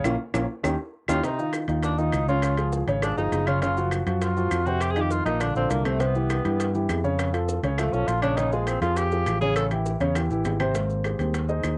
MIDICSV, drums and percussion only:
0, 0, Header, 1, 2, 480
1, 0, Start_track
1, 0, Tempo, 297177
1, 76, Time_signature, 4, 2, 24, 8
1, 19025, End_track
2, 0, Start_track
2, 0, Title_t, "Drums"
2, 68, Note_on_c, 9, 65, 100
2, 70, Note_on_c, 9, 75, 96
2, 73, Note_on_c, 9, 60, 104
2, 78, Note_on_c, 9, 70, 98
2, 230, Note_off_c, 9, 65, 0
2, 232, Note_off_c, 9, 75, 0
2, 234, Note_off_c, 9, 60, 0
2, 240, Note_off_c, 9, 70, 0
2, 548, Note_on_c, 9, 60, 106
2, 548, Note_on_c, 9, 65, 103
2, 548, Note_on_c, 9, 75, 94
2, 558, Note_on_c, 9, 70, 100
2, 709, Note_off_c, 9, 60, 0
2, 709, Note_off_c, 9, 65, 0
2, 709, Note_off_c, 9, 75, 0
2, 720, Note_off_c, 9, 70, 0
2, 1031, Note_on_c, 9, 65, 98
2, 1033, Note_on_c, 9, 60, 104
2, 1033, Note_on_c, 9, 75, 103
2, 1041, Note_on_c, 9, 70, 96
2, 1193, Note_off_c, 9, 65, 0
2, 1194, Note_off_c, 9, 75, 0
2, 1195, Note_off_c, 9, 60, 0
2, 1203, Note_off_c, 9, 70, 0
2, 1746, Note_on_c, 9, 75, 102
2, 1754, Note_on_c, 9, 60, 102
2, 1754, Note_on_c, 9, 65, 95
2, 1761, Note_on_c, 9, 70, 103
2, 1907, Note_off_c, 9, 75, 0
2, 1915, Note_off_c, 9, 65, 0
2, 1916, Note_off_c, 9, 60, 0
2, 1922, Note_off_c, 9, 70, 0
2, 1993, Note_on_c, 9, 65, 70
2, 1996, Note_on_c, 9, 60, 71
2, 2001, Note_on_c, 9, 70, 69
2, 2154, Note_off_c, 9, 65, 0
2, 2157, Note_off_c, 9, 60, 0
2, 2162, Note_off_c, 9, 70, 0
2, 2237, Note_on_c, 9, 60, 33
2, 2244, Note_on_c, 9, 70, 29
2, 2399, Note_off_c, 9, 60, 0
2, 2405, Note_off_c, 9, 70, 0
2, 2467, Note_on_c, 9, 65, 90
2, 2476, Note_on_c, 9, 60, 66
2, 2477, Note_on_c, 9, 75, 66
2, 2480, Note_on_c, 9, 70, 68
2, 2628, Note_off_c, 9, 65, 0
2, 2638, Note_off_c, 9, 60, 0
2, 2638, Note_off_c, 9, 75, 0
2, 2641, Note_off_c, 9, 70, 0
2, 2710, Note_on_c, 9, 65, 72
2, 2727, Note_on_c, 9, 70, 27
2, 2872, Note_off_c, 9, 65, 0
2, 2888, Note_off_c, 9, 70, 0
2, 2947, Note_on_c, 9, 65, 70
2, 2960, Note_on_c, 9, 60, 70
2, 2960, Note_on_c, 9, 70, 67
2, 3108, Note_off_c, 9, 65, 0
2, 3121, Note_off_c, 9, 60, 0
2, 3121, Note_off_c, 9, 70, 0
2, 3202, Note_on_c, 9, 70, 31
2, 3207, Note_on_c, 9, 60, 35
2, 3363, Note_off_c, 9, 70, 0
2, 3369, Note_off_c, 9, 60, 0
2, 3429, Note_on_c, 9, 65, 94
2, 3443, Note_on_c, 9, 70, 67
2, 3444, Note_on_c, 9, 60, 34
2, 3444, Note_on_c, 9, 61, 86
2, 3444, Note_on_c, 9, 75, 62
2, 3590, Note_off_c, 9, 65, 0
2, 3604, Note_off_c, 9, 70, 0
2, 3605, Note_off_c, 9, 75, 0
2, 3606, Note_off_c, 9, 60, 0
2, 3606, Note_off_c, 9, 61, 0
2, 3685, Note_on_c, 9, 70, 29
2, 3688, Note_on_c, 9, 60, 37
2, 3846, Note_off_c, 9, 70, 0
2, 3850, Note_off_c, 9, 60, 0
2, 3912, Note_on_c, 9, 65, 86
2, 3921, Note_on_c, 9, 70, 74
2, 3921, Note_on_c, 9, 75, 61
2, 3924, Note_on_c, 9, 60, 65
2, 4073, Note_off_c, 9, 65, 0
2, 4082, Note_off_c, 9, 70, 0
2, 4082, Note_off_c, 9, 75, 0
2, 4085, Note_off_c, 9, 60, 0
2, 4157, Note_on_c, 9, 65, 68
2, 4163, Note_on_c, 9, 70, 28
2, 4167, Note_on_c, 9, 60, 33
2, 4318, Note_off_c, 9, 65, 0
2, 4325, Note_off_c, 9, 70, 0
2, 4328, Note_off_c, 9, 60, 0
2, 4399, Note_on_c, 9, 70, 73
2, 4402, Note_on_c, 9, 60, 65
2, 4560, Note_off_c, 9, 70, 0
2, 4563, Note_off_c, 9, 60, 0
2, 4646, Note_on_c, 9, 65, 68
2, 4649, Note_on_c, 9, 70, 28
2, 4807, Note_off_c, 9, 65, 0
2, 4810, Note_off_c, 9, 70, 0
2, 4883, Note_on_c, 9, 60, 76
2, 4883, Note_on_c, 9, 65, 96
2, 4887, Note_on_c, 9, 75, 73
2, 4891, Note_on_c, 9, 70, 74
2, 5045, Note_off_c, 9, 60, 0
2, 5045, Note_off_c, 9, 65, 0
2, 5049, Note_off_c, 9, 75, 0
2, 5052, Note_off_c, 9, 70, 0
2, 5127, Note_on_c, 9, 60, 34
2, 5132, Note_on_c, 9, 70, 29
2, 5289, Note_off_c, 9, 60, 0
2, 5293, Note_off_c, 9, 70, 0
2, 5364, Note_on_c, 9, 60, 37
2, 5364, Note_on_c, 9, 61, 86
2, 5366, Note_on_c, 9, 65, 67
2, 5366, Note_on_c, 9, 66, 66
2, 5369, Note_on_c, 9, 70, 64
2, 5526, Note_off_c, 9, 60, 0
2, 5526, Note_off_c, 9, 61, 0
2, 5528, Note_off_c, 9, 65, 0
2, 5528, Note_off_c, 9, 66, 0
2, 5530, Note_off_c, 9, 70, 0
2, 5604, Note_on_c, 9, 65, 88
2, 5607, Note_on_c, 9, 70, 32
2, 5609, Note_on_c, 9, 60, 36
2, 5609, Note_on_c, 9, 75, 69
2, 5765, Note_off_c, 9, 65, 0
2, 5768, Note_off_c, 9, 70, 0
2, 5770, Note_off_c, 9, 60, 0
2, 5771, Note_off_c, 9, 75, 0
2, 5844, Note_on_c, 9, 65, 68
2, 5849, Note_on_c, 9, 70, 69
2, 5851, Note_on_c, 9, 60, 69
2, 6006, Note_off_c, 9, 65, 0
2, 6010, Note_off_c, 9, 70, 0
2, 6013, Note_off_c, 9, 60, 0
2, 6090, Note_on_c, 9, 70, 29
2, 6093, Note_on_c, 9, 60, 32
2, 6252, Note_off_c, 9, 70, 0
2, 6255, Note_off_c, 9, 60, 0
2, 6319, Note_on_c, 9, 65, 94
2, 6328, Note_on_c, 9, 60, 63
2, 6332, Note_on_c, 9, 70, 73
2, 6333, Note_on_c, 9, 75, 64
2, 6481, Note_off_c, 9, 65, 0
2, 6490, Note_off_c, 9, 60, 0
2, 6493, Note_off_c, 9, 70, 0
2, 6495, Note_off_c, 9, 75, 0
2, 6569, Note_on_c, 9, 65, 74
2, 6570, Note_on_c, 9, 70, 28
2, 6730, Note_off_c, 9, 65, 0
2, 6732, Note_off_c, 9, 70, 0
2, 6809, Note_on_c, 9, 65, 69
2, 6809, Note_on_c, 9, 70, 71
2, 6810, Note_on_c, 9, 60, 69
2, 6970, Note_off_c, 9, 65, 0
2, 6970, Note_off_c, 9, 70, 0
2, 6972, Note_off_c, 9, 60, 0
2, 7048, Note_on_c, 9, 60, 38
2, 7054, Note_on_c, 9, 70, 31
2, 7210, Note_off_c, 9, 60, 0
2, 7216, Note_off_c, 9, 70, 0
2, 7283, Note_on_c, 9, 60, 37
2, 7283, Note_on_c, 9, 61, 82
2, 7287, Note_on_c, 9, 65, 97
2, 7289, Note_on_c, 9, 70, 69
2, 7291, Note_on_c, 9, 75, 67
2, 7444, Note_off_c, 9, 60, 0
2, 7444, Note_off_c, 9, 61, 0
2, 7448, Note_off_c, 9, 65, 0
2, 7450, Note_off_c, 9, 70, 0
2, 7453, Note_off_c, 9, 75, 0
2, 7523, Note_on_c, 9, 60, 35
2, 7532, Note_on_c, 9, 70, 30
2, 7685, Note_off_c, 9, 60, 0
2, 7694, Note_off_c, 9, 70, 0
2, 7762, Note_on_c, 9, 60, 71
2, 7769, Note_on_c, 9, 65, 94
2, 7772, Note_on_c, 9, 75, 60
2, 7773, Note_on_c, 9, 70, 75
2, 7923, Note_off_c, 9, 60, 0
2, 7931, Note_off_c, 9, 65, 0
2, 7934, Note_off_c, 9, 70, 0
2, 7934, Note_off_c, 9, 75, 0
2, 8006, Note_on_c, 9, 60, 35
2, 8011, Note_on_c, 9, 70, 29
2, 8013, Note_on_c, 9, 65, 73
2, 8168, Note_off_c, 9, 60, 0
2, 8172, Note_off_c, 9, 70, 0
2, 8175, Note_off_c, 9, 65, 0
2, 8246, Note_on_c, 9, 60, 62
2, 8252, Note_on_c, 9, 70, 73
2, 8407, Note_off_c, 9, 60, 0
2, 8413, Note_off_c, 9, 70, 0
2, 8495, Note_on_c, 9, 70, 29
2, 8499, Note_on_c, 9, 65, 72
2, 8657, Note_off_c, 9, 70, 0
2, 8660, Note_off_c, 9, 65, 0
2, 8728, Note_on_c, 9, 60, 70
2, 8729, Note_on_c, 9, 70, 68
2, 8734, Note_on_c, 9, 65, 93
2, 8736, Note_on_c, 9, 75, 68
2, 8889, Note_off_c, 9, 60, 0
2, 8890, Note_off_c, 9, 70, 0
2, 8895, Note_off_c, 9, 65, 0
2, 8898, Note_off_c, 9, 75, 0
2, 8971, Note_on_c, 9, 70, 30
2, 8973, Note_on_c, 9, 60, 40
2, 9133, Note_off_c, 9, 70, 0
2, 9135, Note_off_c, 9, 60, 0
2, 9211, Note_on_c, 9, 70, 69
2, 9215, Note_on_c, 9, 60, 38
2, 9215, Note_on_c, 9, 61, 85
2, 9218, Note_on_c, 9, 65, 68
2, 9373, Note_off_c, 9, 70, 0
2, 9377, Note_off_c, 9, 60, 0
2, 9377, Note_off_c, 9, 61, 0
2, 9379, Note_off_c, 9, 65, 0
2, 9452, Note_on_c, 9, 70, 30
2, 9454, Note_on_c, 9, 65, 90
2, 9455, Note_on_c, 9, 60, 38
2, 9457, Note_on_c, 9, 75, 65
2, 9614, Note_off_c, 9, 70, 0
2, 9616, Note_off_c, 9, 60, 0
2, 9616, Note_off_c, 9, 65, 0
2, 9619, Note_off_c, 9, 75, 0
2, 9691, Note_on_c, 9, 70, 74
2, 9693, Note_on_c, 9, 60, 69
2, 9697, Note_on_c, 9, 65, 69
2, 9852, Note_off_c, 9, 70, 0
2, 9855, Note_off_c, 9, 60, 0
2, 9858, Note_off_c, 9, 65, 0
2, 9933, Note_on_c, 9, 70, 29
2, 9935, Note_on_c, 9, 60, 36
2, 10094, Note_off_c, 9, 70, 0
2, 10096, Note_off_c, 9, 60, 0
2, 10172, Note_on_c, 9, 70, 68
2, 10174, Note_on_c, 9, 75, 66
2, 10176, Note_on_c, 9, 65, 98
2, 10178, Note_on_c, 9, 60, 64
2, 10333, Note_off_c, 9, 70, 0
2, 10336, Note_off_c, 9, 75, 0
2, 10337, Note_off_c, 9, 65, 0
2, 10340, Note_off_c, 9, 60, 0
2, 10418, Note_on_c, 9, 70, 28
2, 10419, Note_on_c, 9, 65, 69
2, 10579, Note_off_c, 9, 70, 0
2, 10581, Note_off_c, 9, 65, 0
2, 10658, Note_on_c, 9, 60, 74
2, 10659, Note_on_c, 9, 70, 73
2, 10665, Note_on_c, 9, 65, 66
2, 10819, Note_off_c, 9, 60, 0
2, 10821, Note_off_c, 9, 70, 0
2, 10826, Note_off_c, 9, 65, 0
2, 10895, Note_on_c, 9, 70, 29
2, 10902, Note_on_c, 9, 60, 38
2, 11057, Note_off_c, 9, 70, 0
2, 11064, Note_off_c, 9, 60, 0
2, 11130, Note_on_c, 9, 75, 69
2, 11134, Note_on_c, 9, 70, 68
2, 11136, Note_on_c, 9, 65, 96
2, 11136, Note_on_c, 9, 66, 71
2, 11143, Note_on_c, 9, 60, 38
2, 11143, Note_on_c, 9, 61, 88
2, 11292, Note_off_c, 9, 75, 0
2, 11295, Note_off_c, 9, 70, 0
2, 11297, Note_off_c, 9, 65, 0
2, 11297, Note_off_c, 9, 66, 0
2, 11304, Note_off_c, 9, 60, 0
2, 11304, Note_off_c, 9, 61, 0
2, 11376, Note_on_c, 9, 70, 30
2, 11381, Note_on_c, 9, 60, 37
2, 11537, Note_off_c, 9, 70, 0
2, 11543, Note_off_c, 9, 60, 0
2, 11612, Note_on_c, 9, 75, 59
2, 11614, Note_on_c, 9, 70, 72
2, 11616, Note_on_c, 9, 65, 95
2, 11617, Note_on_c, 9, 60, 76
2, 11774, Note_off_c, 9, 75, 0
2, 11776, Note_off_c, 9, 70, 0
2, 11777, Note_off_c, 9, 65, 0
2, 11779, Note_off_c, 9, 60, 0
2, 11856, Note_on_c, 9, 70, 29
2, 11857, Note_on_c, 9, 60, 34
2, 11858, Note_on_c, 9, 65, 69
2, 12018, Note_off_c, 9, 70, 0
2, 12019, Note_off_c, 9, 60, 0
2, 12020, Note_off_c, 9, 65, 0
2, 12092, Note_on_c, 9, 70, 76
2, 12095, Note_on_c, 9, 60, 67
2, 12254, Note_off_c, 9, 70, 0
2, 12256, Note_off_c, 9, 60, 0
2, 12332, Note_on_c, 9, 70, 29
2, 12335, Note_on_c, 9, 65, 74
2, 12493, Note_off_c, 9, 70, 0
2, 12496, Note_off_c, 9, 65, 0
2, 12567, Note_on_c, 9, 75, 70
2, 12572, Note_on_c, 9, 65, 91
2, 12574, Note_on_c, 9, 60, 73
2, 12576, Note_on_c, 9, 70, 73
2, 12729, Note_off_c, 9, 75, 0
2, 12734, Note_off_c, 9, 65, 0
2, 12736, Note_off_c, 9, 60, 0
2, 12737, Note_off_c, 9, 70, 0
2, 12814, Note_on_c, 9, 70, 32
2, 12815, Note_on_c, 9, 60, 39
2, 12976, Note_off_c, 9, 60, 0
2, 12976, Note_off_c, 9, 70, 0
2, 13049, Note_on_c, 9, 65, 75
2, 13050, Note_on_c, 9, 70, 71
2, 13054, Note_on_c, 9, 60, 36
2, 13054, Note_on_c, 9, 61, 90
2, 13211, Note_off_c, 9, 65, 0
2, 13212, Note_off_c, 9, 70, 0
2, 13215, Note_off_c, 9, 60, 0
2, 13215, Note_off_c, 9, 61, 0
2, 13281, Note_on_c, 9, 75, 65
2, 13284, Note_on_c, 9, 65, 89
2, 13289, Note_on_c, 9, 70, 32
2, 13295, Note_on_c, 9, 60, 36
2, 13443, Note_off_c, 9, 75, 0
2, 13445, Note_off_c, 9, 65, 0
2, 13451, Note_off_c, 9, 70, 0
2, 13457, Note_off_c, 9, 60, 0
2, 13523, Note_on_c, 9, 65, 70
2, 13525, Note_on_c, 9, 70, 75
2, 13532, Note_on_c, 9, 60, 75
2, 13684, Note_off_c, 9, 65, 0
2, 13687, Note_off_c, 9, 70, 0
2, 13694, Note_off_c, 9, 60, 0
2, 13767, Note_on_c, 9, 70, 30
2, 13771, Note_on_c, 9, 60, 35
2, 13929, Note_off_c, 9, 70, 0
2, 13932, Note_off_c, 9, 60, 0
2, 14002, Note_on_c, 9, 65, 98
2, 14003, Note_on_c, 9, 75, 64
2, 14007, Note_on_c, 9, 70, 70
2, 14008, Note_on_c, 9, 60, 63
2, 14164, Note_off_c, 9, 65, 0
2, 14165, Note_off_c, 9, 75, 0
2, 14168, Note_off_c, 9, 70, 0
2, 14169, Note_off_c, 9, 60, 0
2, 14245, Note_on_c, 9, 65, 73
2, 14247, Note_on_c, 9, 70, 31
2, 14407, Note_off_c, 9, 65, 0
2, 14409, Note_off_c, 9, 70, 0
2, 14484, Note_on_c, 9, 60, 72
2, 14484, Note_on_c, 9, 70, 77
2, 14490, Note_on_c, 9, 65, 74
2, 14646, Note_off_c, 9, 60, 0
2, 14646, Note_off_c, 9, 70, 0
2, 14651, Note_off_c, 9, 65, 0
2, 14722, Note_on_c, 9, 70, 33
2, 14728, Note_on_c, 9, 60, 37
2, 14884, Note_off_c, 9, 70, 0
2, 14890, Note_off_c, 9, 60, 0
2, 14962, Note_on_c, 9, 65, 97
2, 14963, Note_on_c, 9, 70, 69
2, 14963, Note_on_c, 9, 75, 66
2, 14973, Note_on_c, 9, 60, 37
2, 14973, Note_on_c, 9, 61, 88
2, 15124, Note_off_c, 9, 65, 0
2, 15124, Note_off_c, 9, 70, 0
2, 15125, Note_off_c, 9, 75, 0
2, 15134, Note_off_c, 9, 60, 0
2, 15134, Note_off_c, 9, 61, 0
2, 15203, Note_on_c, 9, 70, 33
2, 15206, Note_on_c, 9, 60, 38
2, 15364, Note_off_c, 9, 70, 0
2, 15368, Note_off_c, 9, 60, 0
2, 15437, Note_on_c, 9, 65, 89
2, 15437, Note_on_c, 9, 70, 73
2, 15440, Note_on_c, 9, 75, 66
2, 15446, Note_on_c, 9, 60, 75
2, 15598, Note_off_c, 9, 70, 0
2, 15599, Note_off_c, 9, 65, 0
2, 15601, Note_off_c, 9, 75, 0
2, 15608, Note_off_c, 9, 60, 0
2, 15680, Note_on_c, 9, 70, 32
2, 15684, Note_on_c, 9, 65, 68
2, 15686, Note_on_c, 9, 60, 34
2, 15842, Note_off_c, 9, 70, 0
2, 15845, Note_off_c, 9, 65, 0
2, 15848, Note_off_c, 9, 60, 0
2, 15919, Note_on_c, 9, 70, 70
2, 15924, Note_on_c, 9, 60, 62
2, 16080, Note_off_c, 9, 70, 0
2, 16085, Note_off_c, 9, 60, 0
2, 16157, Note_on_c, 9, 70, 30
2, 16167, Note_on_c, 9, 65, 76
2, 16318, Note_off_c, 9, 70, 0
2, 16329, Note_off_c, 9, 65, 0
2, 16399, Note_on_c, 9, 65, 96
2, 16403, Note_on_c, 9, 75, 72
2, 16404, Note_on_c, 9, 60, 72
2, 16404, Note_on_c, 9, 70, 75
2, 16560, Note_off_c, 9, 65, 0
2, 16564, Note_off_c, 9, 75, 0
2, 16565, Note_off_c, 9, 60, 0
2, 16566, Note_off_c, 9, 70, 0
2, 16641, Note_on_c, 9, 60, 37
2, 16645, Note_on_c, 9, 70, 33
2, 16803, Note_off_c, 9, 60, 0
2, 16806, Note_off_c, 9, 70, 0
2, 16874, Note_on_c, 9, 70, 67
2, 16880, Note_on_c, 9, 65, 76
2, 16880, Note_on_c, 9, 66, 74
2, 16884, Note_on_c, 9, 60, 37
2, 16884, Note_on_c, 9, 61, 97
2, 17036, Note_off_c, 9, 70, 0
2, 17041, Note_off_c, 9, 65, 0
2, 17041, Note_off_c, 9, 66, 0
2, 17045, Note_off_c, 9, 60, 0
2, 17045, Note_off_c, 9, 61, 0
2, 17118, Note_on_c, 9, 70, 31
2, 17118, Note_on_c, 9, 75, 71
2, 17120, Note_on_c, 9, 65, 99
2, 17128, Note_on_c, 9, 60, 37
2, 17280, Note_off_c, 9, 70, 0
2, 17280, Note_off_c, 9, 75, 0
2, 17282, Note_off_c, 9, 65, 0
2, 17289, Note_off_c, 9, 60, 0
2, 17356, Note_on_c, 9, 70, 72
2, 17364, Note_on_c, 9, 60, 68
2, 17365, Note_on_c, 9, 65, 65
2, 17517, Note_off_c, 9, 70, 0
2, 17526, Note_off_c, 9, 60, 0
2, 17526, Note_off_c, 9, 65, 0
2, 17599, Note_on_c, 9, 70, 28
2, 17605, Note_on_c, 9, 60, 33
2, 17761, Note_off_c, 9, 70, 0
2, 17767, Note_off_c, 9, 60, 0
2, 17836, Note_on_c, 9, 65, 94
2, 17836, Note_on_c, 9, 75, 65
2, 17841, Note_on_c, 9, 60, 62
2, 17843, Note_on_c, 9, 70, 72
2, 17998, Note_off_c, 9, 65, 0
2, 17998, Note_off_c, 9, 75, 0
2, 18003, Note_off_c, 9, 60, 0
2, 18004, Note_off_c, 9, 70, 0
2, 18075, Note_on_c, 9, 65, 69
2, 18075, Note_on_c, 9, 70, 30
2, 18237, Note_off_c, 9, 65, 0
2, 18237, Note_off_c, 9, 70, 0
2, 18317, Note_on_c, 9, 65, 70
2, 18318, Note_on_c, 9, 70, 70
2, 18320, Note_on_c, 9, 60, 75
2, 18479, Note_off_c, 9, 65, 0
2, 18479, Note_off_c, 9, 70, 0
2, 18481, Note_off_c, 9, 60, 0
2, 18554, Note_on_c, 9, 70, 30
2, 18562, Note_on_c, 9, 60, 34
2, 18716, Note_off_c, 9, 70, 0
2, 18723, Note_off_c, 9, 60, 0
2, 18792, Note_on_c, 9, 70, 67
2, 18793, Note_on_c, 9, 75, 65
2, 18794, Note_on_c, 9, 65, 96
2, 18801, Note_on_c, 9, 60, 36
2, 18801, Note_on_c, 9, 61, 83
2, 18953, Note_off_c, 9, 70, 0
2, 18954, Note_off_c, 9, 75, 0
2, 18955, Note_off_c, 9, 65, 0
2, 18963, Note_off_c, 9, 60, 0
2, 18963, Note_off_c, 9, 61, 0
2, 19025, End_track
0, 0, End_of_file